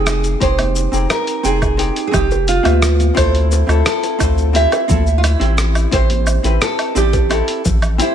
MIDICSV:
0, 0, Header, 1, 5, 480
1, 0, Start_track
1, 0, Tempo, 689655
1, 287, Time_signature, 4, 2, 24, 8
1, 5671, End_track
2, 0, Start_track
2, 0, Title_t, "Nylon-string guitar"
2, 0, Program_c, 0, 24
2, 0, Note_on_c, 0, 68, 91
2, 264, Note_off_c, 0, 68, 0
2, 295, Note_on_c, 0, 72, 93
2, 769, Note_off_c, 0, 72, 0
2, 772, Note_on_c, 0, 70, 95
2, 1011, Note_off_c, 0, 70, 0
2, 1014, Note_on_c, 0, 68, 98
2, 1434, Note_off_c, 0, 68, 0
2, 1443, Note_on_c, 0, 68, 72
2, 1489, Note_off_c, 0, 68, 0
2, 1491, Note_on_c, 0, 67, 90
2, 1713, Note_off_c, 0, 67, 0
2, 1731, Note_on_c, 0, 65, 99
2, 2212, Note_on_c, 0, 72, 111
2, 2223, Note_off_c, 0, 65, 0
2, 2662, Note_off_c, 0, 72, 0
2, 2695, Note_on_c, 0, 69, 100
2, 3171, Note_off_c, 0, 69, 0
2, 3174, Note_on_c, 0, 76, 104
2, 3574, Note_off_c, 0, 76, 0
2, 3606, Note_on_c, 0, 65, 71
2, 3649, Note_off_c, 0, 65, 0
2, 3651, Note_on_c, 0, 64, 89
2, 4102, Note_off_c, 0, 64, 0
2, 4131, Note_on_c, 0, 72, 104
2, 4581, Note_off_c, 0, 72, 0
2, 4610, Note_on_c, 0, 69, 94
2, 4851, Note_off_c, 0, 69, 0
2, 4854, Note_on_c, 0, 67, 96
2, 5543, Note_off_c, 0, 67, 0
2, 5582, Note_on_c, 0, 64, 97
2, 5671, Note_off_c, 0, 64, 0
2, 5671, End_track
3, 0, Start_track
3, 0, Title_t, "Hollow-body jazz guitar"
3, 0, Program_c, 1, 26
3, 0, Note_on_c, 1, 60, 71
3, 0, Note_on_c, 1, 63, 71
3, 0, Note_on_c, 1, 68, 79
3, 0, Note_on_c, 1, 79, 65
3, 253, Note_off_c, 1, 60, 0
3, 256, Note_off_c, 1, 63, 0
3, 259, Note_off_c, 1, 79, 0
3, 262, Note_off_c, 1, 68, 0
3, 281, Note_on_c, 1, 60, 85
3, 285, Note_on_c, 1, 63, 75
3, 293, Note_on_c, 1, 67, 77
3, 297, Note_on_c, 1, 68, 100
3, 616, Note_off_c, 1, 60, 0
3, 618, Note_off_c, 1, 63, 0
3, 622, Note_off_c, 1, 67, 0
3, 624, Note_off_c, 1, 68, 0
3, 639, Note_on_c, 1, 60, 71
3, 644, Note_on_c, 1, 63, 62
3, 650, Note_on_c, 1, 67, 62
3, 655, Note_on_c, 1, 68, 71
3, 974, Note_off_c, 1, 60, 0
3, 977, Note_off_c, 1, 63, 0
3, 980, Note_off_c, 1, 67, 0
3, 982, Note_off_c, 1, 68, 0
3, 998, Note_on_c, 1, 60, 80
3, 1002, Note_on_c, 1, 63, 75
3, 1008, Note_on_c, 1, 79, 75
3, 1014, Note_on_c, 1, 68, 91
3, 1214, Note_off_c, 1, 60, 0
3, 1216, Note_off_c, 1, 63, 0
3, 1219, Note_off_c, 1, 79, 0
3, 1222, Note_off_c, 1, 68, 0
3, 1233, Note_on_c, 1, 60, 82
3, 1240, Note_on_c, 1, 63, 77
3, 1246, Note_on_c, 1, 67, 81
3, 1252, Note_on_c, 1, 68, 91
3, 1452, Note_off_c, 1, 60, 0
3, 1455, Note_off_c, 1, 63, 0
3, 1458, Note_off_c, 1, 67, 0
3, 1461, Note_off_c, 1, 68, 0
3, 1471, Note_on_c, 1, 60, 85
3, 1477, Note_on_c, 1, 63, 87
3, 1481, Note_on_c, 1, 67, 79
3, 1488, Note_on_c, 1, 68, 103
3, 1572, Note_off_c, 1, 60, 0
3, 1575, Note_off_c, 1, 63, 0
3, 1577, Note_off_c, 1, 67, 0
3, 1580, Note_off_c, 1, 68, 0
3, 1831, Note_on_c, 1, 60, 71
3, 1837, Note_on_c, 1, 76, 68
3, 1842, Note_on_c, 1, 65, 69
3, 1848, Note_on_c, 1, 71, 86
3, 2171, Note_off_c, 1, 60, 0
3, 2174, Note_off_c, 1, 76, 0
3, 2176, Note_off_c, 1, 65, 0
3, 2179, Note_off_c, 1, 71, 0
3, 2190, Note_on_c, 1, 60, 93
3, 2195, Note_on_c, 1, 64, 82
3, 2202, Note_on_c, 1, 65, 83
3, 2208, Note_on_c, 1, 69, 94
3, 2530, Note_off_c, 1, 60, 0
3, 2533, Note_off_c, 1, 64, 0
3, 2536, Note_off_c, 1, 65, 0
3, 2539, Note_off_c, 1, 69, 0
3, 2553, Note_on_c, 1, 60, 68
3, 2558, Note_on_c, 1, 64, 64
3, 2565, Note_on_c, 1, 65, 66
3, 2570, Note_on_c, 1, 69, 80
3, 2891, Note_off_c, 1, 60, 0
3, 2894, Note_off_c, 1, 64, 0
3, 2898, Note_off_c, 1, 65, 0
3, 2900, Note_off_c, 1, 69, 0
3, 2913, Note_on_c, 1, 60, 82
3, 2920, Note_on_c, 1, 64, 74
3, 2926, Note_on_c, 1, 65, 75
3, 2932, Note_on_c, 1, 72, 84
3, 3132, Note_off_c, 1, 60, 0
3, 3135, Note_off_c, 1, 64, 0
3, 3138, Note_off_c, 1, 65, 0
3, 3141, Note_off_c, 1, 72, 0
3, 3154, Note_on_c, 1, 60, 81
3, 3159, Note_on_c, 1, 64, 76
3, 3166, Note_on_c, 1, 65, 77
3, 3171, Note_on_c, 1, 67, 97
3, 3372, Note_off_c, 1, 60, 0
3, 3374, Note_off_c, 1, 64, 0
3, 3378, Note_off_c, 1, 65, 0
3, 3380, Note_off_c, 1, 67, 0
3, 3396, Note_on_c, 1, 60, 93
3, 3402, Note_on_c, 1, 64, 86
3, 3407, Note_on_c, 1, 65, 88
3, 3413, Note_on_c, 1, 69, 103
3, 3494, Note_off_c, 1, 60, 0
3, 3497, Note_off_c, 1, 64, 0
3, 3500, Note_off_c, 1, 65, 0
3, 3503, Note_off_c, 1, 69, 0
3, 3756, Note_on_c, 1, 60, 73
3, 3761, Note_on_c, 1, 64, 66
3, 3768, Note_on_c, 1, 67, 73
3, 3774, Note_on_c, 1, 72, 77
3, 4093, Note_off_c, 1, 60, 0
3, 4095, Note_off_c, 1, 64, 0
3, 4099, Note_off_c, 1, 67, 0
3, 4102, Note_off_c, 1, 72, 0
3, 4116, Note_on_c, 1, 60, 89
3, 4122, Note_on_c, 1, 64, 83
3, 4130, Note_on_c, 1, 67, 83
3, 4134, Note_on_c, 1, 72, 94
3, 4453, Note_off_c, 1, 60, 0
3, 4456, Note_off_c, 1, 64, 0
3, 4460, Note_off_c, 1, 67, 0
3, 4462, Note_off_c, 1, 72, 0
3, 4477, Note_on_c, 1, 60, 70
3, 4485, Note_on_c, 1, 64, 69
3, 4489, Note_on_c, 1, 67, 66
3, 4496, Note_on_c, 1, 71, 76
3, 4813, Note_off_c, 1, 60, 0
3, 4817, Note_off_c, 1, 64, 0
3, 4819, Note_off_c, 1, 67, 0
3, 4823, Note_off_c, 1, 71, 0
3, 4837, Note_on_c, 1, 60, 83
3, 4842, Note_on_c, 1, 64, 72
3, 4848, Note_on_c, 1, 67, 75
3, 4853, Note_on_c, 1, 74, 86
3, 5054, Note_off_c, 1, 60, 0
3, 5056, Note_off_c, 1, 64, 0
3, 5059, Note_off_c, 1, 67, 0
3, 5062, Note_off_c, 1, 74, 0
3, 5076, Note_on_c, 1, 60, 88
3, 5082, Note_on_c, 1, 64, 77
3, 5087, Note_on_c, 1, 67, 77
3, 5093, Note_on_c, 1, 69, 98
3, 5293, Note_off_c, 1, 60, 0
3, 5296, Note_off_c, 1, 64, 0
3, 5299, Note_off_c, 1, 67, 0
3, 5302, Note_off_c, 1, 69, 0
3, 5556, Note_on_c, 1, 60, 87
3, 5563, Note_on_c, 1, 64, 82
3, 5568, Note_on_c, 1, 67, 86
3, 5575, Note_on_c, 1, 72, 93
3, 5671, Note_off_c, 1, 60, 0
3, 5671, Note_off_c, 1, 64, 0
3, 5671, Note_off_c, 1, 67, 0
3, 5671, Note_off_c, 1, 72, 0
3, 5671, End_track
4, 0, Start_track
4, 0, Title_t, "Analog synth bass"
4, 0, Program_c, 2, 38
4, 0, Note_on_c, 2, 29, 85
4, 245, Note_off_c, 2, 29, 0
4, 288, Note_on_c, 2, 29, 92
4, 605, Note_off_c, 2, 29, 0
4, 645, Note_on_c, 2, 29, 103
4, 739, Note_off_c, 2, 29, 0
4, 1006, Note_on_c, 2, 29, 81
4, 1324, Note_off_c, 2, 29, 0
4, 1489, Note_on_c, 2, 29, 95
4, 1805, Note_off_c, 2, 29, 0
4, 1845, Note_on_c, 2, 38, 92
4, 2163, Note_off_c, 2, 38, 0
4, 2208, Note_on_c, 2, 38, 99
4, 2525, Note_off_c, 2, 38, 0
4, 2564, Note_on_c, 2, 38, 101
4, 2659, Note_off_c, 2, 38, 0
4, 2927, Note_on_c, 2, 38, 76
4, 3244, Note_off_c, 2, 38, 0
4, 3407, Note_on_c, 2, 38, 98
4, 3724, Note_off_c, 2, 38, 0
4, 3763, Note_on_c, 2, 33, 94
4, 4082, Note_off_c, 2, 33, 0
4, 4127, Note_on_c, 2, 33, 95
4, 4444, Note_off_c, 2, 33, 0
4, 4483, Note_on_c, 2, 33, 103
4, 4579, Note_off_c, 2, 33, 0
4, 4843, Note_on_c, 2, 33, 78
4, 5163, Note_off_c, 2, 33, 0
4, 5327, Note_on_c, 2, 33, 96
4, 5568, Note_off_c, 2, 33, 0
4, 5671, End_track
5, 0, Start_track
5, 0, Title_t, "Drums"
5, 46, Note_on_c, 9, 37, 70
5, 46, Note_on_c, 9, 77, 75
5, 47, Note_on_c, 9, 82, 77
5, 116, Note_off_c, 9, 37, 0
5, 116, Note_off_c, 9, 77, 0
5, 116, Note_off_c, 9, 82, 0
5, 167, Note_on_c, 9, 42, 27
5, 168, Note_on_c, 9, 82, 31
5, 237, Note_off_c, 9, 42, 0
5, 237, Note_off_c, 9, 82, 0
5, 287, Note_on_c, 9, 60, 42
5, 288, Note_on_c, 9, 36, 110
5, 289, Note_on_c, 9, 42, 64
5, 289, Note_on_c, 9, 82, 42
5, 357, Note_off_c, 9, 60, 0
5, 358, Note_off_c, 9, 36, 0
5, 359, Note_off_c, 9, 42, 0
5, 359, Note_off_c, 9, 82, 0
5, 408, Note_on_c, 9, 42, 42
5, 408, Note_on_c, 9, 77, 78
5, 408, Note_on_c, 9, 82, 21
5, 411, Note_on_c, 9, 63, 63
5, 478, Note_off_c, 9, 42, 0
5, 478, Note_off_c, 9, 77, 0
5, 478, Note_off_c, 9, 82, 0
5, 480, Note_off_c, 9, 63, 0
5, 527, Note_on_c, 9, 82, 70
5, 597, Note_off_c, 9, 82, 0
5, 649, Note_on_c, 9, 82, 33
5, 718, Note_off_c, 9, 82, 0
5, 766, Note_on_c, 9, 37, 81
5, 766, Note_on_c, 9, 42, 67
5, 766, Note_on_c, 9, 77, 82
5, 767, Note_on_c, 9, 60, 74
5, 767, Note_on_c, 9, 82, 44
5, 836, Note_off_c, 9, 37, 0
5, 836, Note_off_c, 9, 42, 0
5, 836, Note_off_c, 9, 60, 0
5, 836, Note_off_c, 9, 77, 0
5, 836, Note_off_c, 9, 82, 0
5, 886, Note_on_c, 9, 42, 46
5, 887, Note_on_c, 9, 82, 20
5, 956, Note_off_c, 9, 42, 0
5, 957, Note_off_c, 9, 82, 0
5, 1006, Note_on_c, 9, 82, 76
5, 1076, Note_off_c, 9, 82, 0
5, 1127, Note_on_c, 9, 77, 74
5, 1128, Note_on_c, 9, 60, 51
5, 1128, Note_on_c, 9, 82, 31
5, 1129, Note_on_c, 9, 36, 96
5, 1197, Note_off_c, 9, 77, 0
5, 1197, Note_off_c, 9, 82, 0
5, 1198, Note_off_c, 9, 36, 0
5, 1198, Note_off_c, 9, 60, 0
5, 1246, Note_on_c, 9, 42, 62
5, 1247, Note_on_c, 9, 82, 39
5, 1316, Note_off_c, 9, 42, 0
5, 1316, Note_off_c, 9, 82, 0
5, 1367, Note_on_c, 9, 42, 42
5, 1367, Note_on_c, 9, 82, 20
5, 1436, Note_off_c, 9, 42, 0
5, 1437, Note_off_c, 9, 82, 0
5, 1487, Note_on_c, 9, 77, 77
5, 1488, Note_on_c, 9, 36, 92
5, 1488, Note_on_c, 9, 64, 83
5, 1488, Note_on_c, 9, 82, 68
5, 1557, Note_off_c, 9, 77, 0
5, 1557, Note_off_c, 9, 82, 0
5, 1558, Note_off_c, 9, 36, 0
5, 1558, Note_off_c, 9, 64, 0
5, 1607, Note_on_c, 9, 82, 31
5, 1613, Note_on_c, 9, 60, 73
5, 1677, Note_off_c, 9, 82, 0
5, 1683, Note_off_c, 9, 60, 0
5, 1726, Note_on_c, 9, 42, 67
5, 1726, Note_on_c, 9, 82, 45
5, 1795, Note_off_c, 9, 42, 0
5, 1796, Note_off_c, 9, 82, 0
5, 1845, Note_on_c, 9, 63, 91
5, 1846, Note_on_c, 9, 42, 41
5, 1846, Note_on_c, 9, 77, 79
5, 1847, Note_on_c, 9, 82, 20
5, 1914, Note_off_c, 9, 63, 0
5, 1916, Note_off_c, 9, 42, 0
5, 1916, Note_off_c, 9, 77, 0
5, 1916, Note_off_c, 9, 82, 0
5, 1966, Note_on_c, 9, 37, 76
5, 1966, Note_on_c, 9, 82, 75
5, 1970, Note_on_c, 9, 60, 43
5, 2035, Note_off_c, 9, 37, 0
5, 2036, Note_off_c, 9, 82, 0
5, 2040, Note_off_c, 9, 60, 0
5, 2087, Note_on_c, 9, 42, 29
5, 2088, Note_on_c, 9, 82, 28
5, 2090, Note_on_c, 9, 63, 73
5, 2157, Note_off_c, 9, 42, 0
5, 2158, Note_off_c, 9, 82, 0
5, 2159, Note_off_c, 9, 63, 0
5, 2208, Note_on_c, 9, 36, 107
5, 2208, Note_on_c, 9, 42, 69
5, 2208, Note_on_c, 9, 77, 87
5, 2208, Note_on_c, 9, 82, 41
5, 2277, Note_off_c, 9, 36, 0
5, 2277, Note_off_c, 9, 42, 0
5, 2277, Note_off_c, 9, 77, 0
5, 2278, Note_off_c, 9, 82, 0
5, 2329, Note_on_c, 9, 42, 46
5, 2330, Note_on_c, 9, 82, 21
5, 2399, Note_off_c, 9, 42, 0
5, 2399, Note_off_c, 9, 82, 0
5, 2448, Note_on_c, 9, 82, 68
5, 2455, Note_on_c, 9, 60, 75
5, 2517, Note_off_c, 9, 82, 0
5, 2524, Note_off_c, 9, 60, 0
5, 2569, Note_on_c, 9, 77, 85
5, 2570, Note_on_c, 9, 82, 33
5, 2639, Note_off_c, 9, 77, 0
5, 2639, Note_off_c, 9, 82, 0
5, 2686, Note_on_c, 9, 37, 79
5, 2686, Note_on_c, 9, 42, 71
5, 2687, Note_on_c, 9, 82, 45
5, 2756, Note_off_c, 9, 37, 0
5, 2756, Note_off_c, 9, 42, 0
5, 2756, Note_off_c, 9, 82, 0
5, 2808, Note_on_c, 9, 42, 49
5, 2809, Note_on_c, 9, 82, 22
5, 2810, Note_on_c, 9, 60, 52
5, 2878, Note_off_c, 9, 42, 0
5, 2878, Note_off_c, 9, 82, 0
5, 2880, Note_off_c, 9, 60, 0
5, 2926, Note_on_c, 9, 77, 85
5, 2926, Note_on_c, 9, 82, 77
5, 2927, Note_on_c, 9, 36, 98
5, 2995, Note_off_c, 9, 77, 0
5, 2996, Note_off_c, 9, 82, 0
5, 2997, Note_off_c, 9, 36, 0
5, 3047, Note_on_c, 9, 82, 31
5, 3116, Note_off_c, 9, 82, 0
5, 3166, Note_on_c, 9, 42, 67
5, 3167, Note_on_c, 9, 82, 41
5, 3236, Note_off_c, 9, 42, 0
5, 3237, Note_off_c, 9, 82, 0
5, 3287, Note_on_c, 9, 42, 42
5, 3287, Note_on_c, 9, 77, 81
5, 3288, Note_on_c, 9, 82, 21
5, 3292, Note_on_c, 9, 60, 78
5, 3357, Note_off_c, 9, 42, 0
5, 3357, Note_off_c, 9, 77, 0
5, 3357, Note_off_c, 9, 82, 0
5, 3362, Note_off_c, 9, 60, 0
5, 3405, Note_on_c, 9, 63, 73
5, 3407, Note_on_c, 9, 36, 93
5, 3407, Note_on_c, 9, 82, 71
5, 3413, Note_on_c, 9, 64, 98
5, 3475, Note_off_c, 9, 63, 0
5, 3476, Note_off_c, 9, 36, 0
5, 3476, Note_off_c, 9, 82, 0
5, 3482, Note_off_c, 9, 64, 0
5, 3527, Note_on_c, 9, 82, 29
5, 3597, Note_off_c, 9, 82, 0
5, 3646, Note_on_c, 9, 42, 69
5, 3646, Note_on_c, 9, 77, 87
5, 3647, Note_on_c, 9, 60, 56
5, 3647, Note_on_c, 9, 82, 44
5, 3716, Note_off_c, 9, 42, 0
5, 3716, Note_off_c, 9, 60, 0
5, 3716, Note_off_c, 9, 77, 0
5, 3716, Note_off_c, 9, 82, 0
5, 3766, Note_on_c, 9, 42, 44
5, 3767, Note_on_c, 9, 82, 19
5, 3836, Note_off_c, 9, 42, 0
5, 3836, Note_off_c, 9, 82, 0
5, 3885, Note_on_c, 9, 37, 75
5, 3885, Note_on_c, 9, 82, 77
5, 3954, Note_off_c, 9, 37, 0
5, 3955, Note_off_c, 9, 82, 0
5, 4005, Note_on_c, 9, 42, 32
5, 4005, Note_on_c, 9, 77, 75
5, 4005, Note_on_c, 9, 82, 31
5, 4074, Note_off_c, 9, 42, 0
5, 4074, Note_off_c, 9, 77, 0
5, 4075, Note_off_c, 9, 82, 0
5, 4124, Note_on_c, 9, 42, 69
5, 4124, Note_on_c, 9, 82, 41
5, 4126, Note_on_c, 9, 60, 74
5, 4127, Note_on_c, 9, 36, 111
5, 4193, Note_off_c, 9, 42, 0
5, 4194, Note_off_c, 9, 82, 0
5, 4196, Note_off_c, 9, 36, 0
5, 4196, Note_off_c, 9, 60, 0
5, 4245, Note_on_c, 9, 42, 44
5, 4245, Note_on_c, 9, 82, 21
5, 4250, Note_on_c, 9, 63, 55
5, 4314, Note_off_c, 9, 42, 0
5, 4315, Note_off_c, 9, 82, 0
5, 4320, Note_off_c, 9, 63, 0
5, 4363, Note_on_c, 9, 77, 78
5, 4363, Note_on_c, 9, 82, 74
5, 4432, Note_off_c, 9, 77, 0
5, 4433, Note_off_c, 9, 82, 0
5, 4485, Note_on_c, 9, 42, 35
5, 4485, Note_on_c, 9, 82, 34
5, 4491, Note_on_c, 9, 60, 55
5, 4554, Note_off_c, 9, 42, 0
5, 4555, Note_off_c, 9, 82, 0
5, 4560, Note_off_c, 9, 60, 0
5, 4605, Note_on_c, 9, 37, 78
5, 4605, Note_on_c, 9, 42, 71
5, 4606, Note_on_c, 9, 82, 45
5, 4675, Note_off_c, 9, 37, 0
5, 4675, Note_off_c, 9, 42, 0
5, 4675, Note_off_c, 9, 82, 0
5, 4725, Note_on_c, 9, 42, 48
5, 4725, Note_on_c, 9, 77, 82
5, 4726, Note_on_c, 9, 82, 21
5, 4795, Note_off_c, 9, 42, 0
5, 4795, Note_off_c, 9, 77, 0
5, 4795, Note_off_c, 9, 82, 0
5, 4845, Note_on_c, 9, 82, 78
5, 4915, Note_off_c, 9, 82, 0
5, 4965, Note_on_c, 9, 42, 29
5, 4965, Note_on_c, 9, 60, 71
5, 4965, Note_on_c, 9, 82, 31
5, 4967, Note_on_c, 9, 36, 99
5, 5034, Note_off_c, 9, 42, 0
5, 5035, Note_off_c, 9, 60, 0
5, 5035, Note_off_c, 9, 82, 0
5, 5037, Note_off_c, 9, 36, 0
5, 5085, Note_on_c, 9, 42, 70
5, 5085, Note_on_c, 9, 77, 76
5, 5085, Note_on_c, 9, 82, 38
5, 5155, Note_off_c, 9, 42, 0
5, 5155, Note_off_c, 9, 77, 0
5, 5155, Note_off_c, 9, 82, 0
5, 5206, Note_on_c, 9, 42, 47
5, 5206, Note_on_c, 9, 82, 19
5, 5275, Note_off_c, 9, 42, 0
5, 5276, Note_off_c, 9, 82, 0
5, 5325, Note_on_c, 9, 82, 69
5, 5327, Note_on_c, 9, 60, 55
5, 5328, Note_on_c, 9, 36, 100
5, 5331, Note_on_c, 9, 64, 96
5, 5395, Note_off_c, 9, 82, 0
5, 5397, Note_off_c, 9, 36, 0
5, 5397, Note_off_c, 9, 60, 0
5, 5400, Note_off_c, 9, 64, 0
5, 5445, Note_on_c, 9, 42, 29
5, 5445, Note_on_c, 9, 77, 76
5, 5445, Note_on_c, 9, 82, 31
5, 5515, Note_off_c, 9, 42, 0
5, 5515, Note_off_c, 9, 77, 0
5, 5515, Note_off_c, 9, 82, 0
5, 5565, Note_on_c, 9, 42, 75
5, 5565, Note_on_c, 9, 82, 43
5, 5634, Note_off_c, 9, 42, 0
5, 5635, Note_off_c, 9, 82, 0
5, 5671, End_track
0, 0, End_of_file